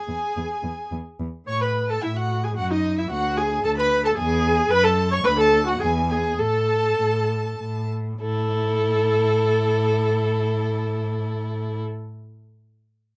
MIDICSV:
0, 0, Header, 1, 5, 480
1, 0, Start_track
1, 0, Tempo, 555042
1, 1277, Time_signature, 3, 2, 24, 8
1, 1754, Tempo, 539568
1, 5114, Tempo, 598205
1, 11016, End_track
2, 0, Start_track
2, 0, Title_t, "Violin"
2, 0, Program_c, 0, 40
2, 0, Note_on_c, 0, 80, 66
2, 798, Note_off_c, 0, 80, 0
2, 1283, Note_on_c, 0, 85, 75
2, 1392, Note_off_c, 0, 85, 0
2, 1409, Note_on_c, 0, 83, 61
2, 1478, Note_off_c, 0, 83, 0
2, 1642, Note_on_c, 0, 81, 66
2, 1755, Note_on_c, 0, 76, 60
2, 1769, Note_off_c, 0, 81, 0
2, 1878, Note_on_c, 0, 78, 68
2, 1892, Note_off_c, 0, 76, 0
2, 2125, Note_on_c, 0, 80, 58
2, 2138, Note_off_c, 0, 78, 0
2, 2241, Note_off_c, 0, 80, 0
2, 2245, Note_on_c, 0, 78, 69
2, 2354, Note_off_c, 0, 78, 0
2, 2359, Note_on_c, 0, 75, 68
2, 2593, Note_off_c, 0, 75, 0
2, 2598, Note_on_c, 0, 76, 63
2, 2646, Note_off_c, 0, 76, 0
2, 2709, Note_on_c, 0, 78, 90
2, 2946, Note_on_c, 0, 80, 76
2, 2960, Note_off_c, 0, 78, 0
2, 3187, Note_off_c, 0, 80, 0
2, 3193, Note_on_c, 0, 81, 81
2, 3303, Note_off_c, 0, 81, 0
2, 3308, Note_on_c, 0, 83, 103
2, 3542, Note_off_c, 0, 83, 0
2, 3550, Note_on_c, 0, 81, 77
2, 3597, Note_off_c, 0, 81, 0
2, 3672, Note_on_c, 0, 80, 96
2, 4130, Note_off_c, 0, 80, 0
2, 4143, Note_on_c, 0, 83, 123
2, 4261, Note_on_c, 0, 81, 100
2, 4274, Note_off_c, 0, 83, 0
2, 4494, Note_off_c, 0, 81, 0
2, 4500, Note_on_c, 0, 85, 97
2, 4625, Note_on_c, 0, 83, 94
2, 4639, Note_off_c, 0, 85, 0
2, 4744, Note_off_c, 0, 83, 0
2, 4755, Note_on_c, 0, 81, 86
2, 4826, Note_off_c, 0, 81, 0
2, 5005, Note_on_c, 0, 78, 69
2, 5124, Note_on_c, 0, 80, 78
2, 5136, Note_off_c, 0, 78, 0
2, 5348, Note_off_c, 0, 80, 0
2, 5353, Note_on_c, 0, 80, 82
2, 5582, Note_on_c, 0, 81, 87
2, 5594, Note_off_c, 0, 80, 0
2, 6794, Note_off_c, 0, 81, 0
2, 7048, Note_on_c, 0, 69, 94
2, 9931, Note_off_c, 0, 69, 0
2, 11016, End_track
3, 0, Start_track
3, 0, Title_t, "Violin"
3, 0, Program_c, 1, 40
3, 0, Note_on_c, 1, 80, 63
3, 781, Note_off_c, 1, 80, 0
3, 1283, Note_on_c, 1, 85, 73
3, 1392, Note_off_c, 1, 85, 0
3, 1402, Note_on_c, 1, 83, 58
3, 1634, Note_off_c, 1, 83, 0
3, 1638, Note_on_c, 1, 81, 57
3, 1748, Note_on_c, 1, 76, 65
3, 1761, Note_off_c, 1, 81, 0
3, 1875, Note_on_c, 1, 78, 63
3, 1889, Note_off_c, 1, 76, 0
3, 2117, Note_off_c, 1, 78, 0
3, 2123, Note_on_c, 1, 80, 66
3, 2170, Note_off_c, 1, 80, 0
3, 2242, Note_on_c, 1, 78, 69
3, 2357, Note_off_c, 1, 78, 0
3, 2370, Note_on_c, 1, 75, 69
3, 2599, Note_off_c, 1, 75, 0
3, 2605, Note_on_c, 1, 76, 68
3, 2718, Note_off_c, 1, 76, 0
3, 2723, Note_on_c, 1, 78, 80
3, 2960, Note_on_c, 1, 80, 79
3, 2974, Note_off_c, 1, 78, 0
3, 3185, Note_off_c, 1, 80, 0
3, 3190, Note_on_c, 1, 81, 92
3, 3238, Note_off_c, 1, 81, 0
3, 3322, Note_on_c, 1, 83, 88
3, 3393, Note_off_c, 1, 83, 0
3, 3558, Note_on_c, 1, 81, 92
3, 3603, Note_off_c, 1, 81, 0
3, 3663, Note_on_c, 1, 80, 99
3, 4144, Note_on_c, 1, 83, 117
3, 4158, Note_off_c, 1, 80, 0
3, 4263, Note_on_c, 1, 81, 87
3, 4277, Note_off_c, 1, 83, 0
3, 4516, Note_on_c, 1, 85, 99
3, 4530, Note_off_c, 1, 81, 0
3, 4637, Note_on_c, 1, 83, 109
3, 4650, Note_off_c, 1, 85, 0
3, 4759, Note_on_c, 1, 81, 93
3, 4772, Note_off_c, 1, 83, 0
3, 5004, Note_on_c, 1, 78, 79
3, 5017, Note_off_c, 1, 81, 0
3, 5121, Note_off_c, 1, 78, 0
3, 5128, Note_on_c, 1, 80, 89
3, 5344, Note_off_c, 1, 80, 0
3, 5349, Note_on_c, 1, 80, 70
3, 5413, Note_off_c, 1, 80, 0
3, 5593, Note_on_c, 1, 81, 76
3, 6775, Note_off_c, 1, 81, 0
3, 7050, Note_on_c, 1, 64, 76
3, 9933, Note_off_c, 1, 64, 0
3, 11016, End_track
4, 0, Start_track
4, 0, Title_t, "Viola"
4, 0, Program_c, 2, 41
4, 0, Note_on_c, 2, 68, 71
4, 790, Note_off_c, 2, 68, 0
4, 1270, Note_on_c, 2, 73, 85
4, 1392, Note_on_c, 2, 71, 72
4, 1405, Note_off_c, 2, 73, 0
4, 1640, Note_on_c, 2, 69, 73
4, 1653, Note_off_c, 2, 71, 0
4, 1746, Note_off_c, 2, 69, 0
4, 1752, Note_on_c, 2, 64, 72
4, 1801, Note_off_c, 2, 64, 0
4, 1871, Note_on_c, 2, 66, 67
4, 2115, Note_on_c, 2, 68, 64
4, 2129, Note_off_c, 2, 66, 0
4, 2227, Note_off_c, 2, 68, 0
4, 2233, Note_on_c, 2, 66, 86
4, 2353, Note_on_c, 2, 63, 76
4, 2367, Note_off_c, 2, 66, 0
4, 2603, Note_on_c, 2, 64, 77
4, 2617, Note_off_c, 2, 63, 0
4, 2705, Note_off_c, 2, 64, 0
4, 2710, Note_on_c, 2, 66, 97
4, 2950, Note_on_c, 2, 68, 92
4, 2963, Note_off_c, 2, 66, 0
4, 3186, Note_off_c, 2, 68, 0
4, 3191, Note_on_c, 2, 69, 106
4, 3239, Note_off_c, 2, 69, 0
4, 3312, Note_on_c, 2, 71, 107
4, 3544, Note_off_c, 2, 71, 0
4, 3556, Note_on_c, 2, 69, 94
4, 3658, Note_off_c, 2, 69, 0
4, 3663, Note_on_c, 2, 68, 116
4, 4133, Note_on_c, 2, 71, 127
4, 4147, Note_off_c, 2, 68, 0
4, 4250, Note_on_c, 2, 69, 92
4, 4264, Note_off_c, 2, 71, 0
4, 4491, Note_off_c, 2, 69, 0
4, 4496, Note_on_c, 2, 73, 113
4, 4545, Note_off_c, 2, 73, 0
4, 4611, Note_on_c, 2, 71, 114
4, 4661, Note_off_c, 2, 71, 0
4, 4731, Note_on_c, 2, 69, 115
4, 4979, Note_off_c, 2, 69, 0
4, 4989, Note_on_c, 2, 66, 86
4, 5101, Note_off_c, 2, 66, 0
4, 5106, Note_on_c, 2, 68, 103
4, 5171, Note_off_c, 2, 68, 0
4, 5345, Note_on_c, 2, 68, 87
4, 5575, Note_on_c, 2, 69, 100
4, 5587, Note_off_c, 2, 68, 0
4, 6790, Note_off_c, 2, 69, 0
4, 7039, Note_on_c, 2, 69, 97
4, 9923, Note_off_c, 2, 69, 0
4, 11016, End_track
5, 0, Start_track
5, 0, Title_t, "Cello"
5, 0, Program_c, 3, 42
5, 72, Note_on_c, 3, 40, 49
5, 141, Note_off_c, 3, 40, 0
5, 321, Note_on_c, 3, 40, 54
5, 390, Note_off_c, 3, 40, 0
5, 549, Note_on_c, 3, 40, 54
5, 618, Note_off_c, 3, 40, 0
5, 795, Note_on_c, 3, 40, 55
5, 864, Note_off_c, 3, 40, 0
5, 1040, Note_on_c, 3, 40, 55
5, 1109, Note_off_c, 3, 40, 0
5, 1275, Note_on_c, 3, 45, 59
5, 1697, Note_off_c, 3, 45, 0
5, 1754, Note_on_c, 3, 45, 61
5, 2180, Note_off_c, 3, 45, 0
5, 2236, Note_on_c, 3, 42, 73
5, 2659, Note_off_c, 3, 42, 0
5, 2717, Note_on_c, 3, 38, 70
5, 3135, Note_off_c, 3, 38, 0
5, 3191, Note_on_c, 3, 38, 73
5, 3610, Note_off_c, 3, 38, 0
5, 3668, Note_on_c, 3, 40, 85
5, 4082, Note_off_c, 3, 40, 0
5, 4135, Note_on_c, 3, 42, 85
5, 4560, Note_off_c, 3, 42, 0
5, 4623, Note_on_c, 3, 38, 90
5, 5058, Note_off_c, 3, 38, 0
5, 5113, Note_on_c, 3, 40, 82
5, 5523, Note_off_c, 3, 40, 0
5, 5576, Note_on_c, 3, 45, 60
5, 5999, Note_off_c, 3, 45, 0
5, 6056, Note_on_c, 3, 45, 60
5, 6486, Note_off_c, 3, 45, 0
5, 6545, Note_on_c, 3, 45, 60
5, 6982, Note_off_c, 3, 45, 0
5, 7034, Note_on_c, 3, 45, 74
5, 9917, Note_off_c, 3, 45, 0
5, 11016, End_track
0, 0, End_of_file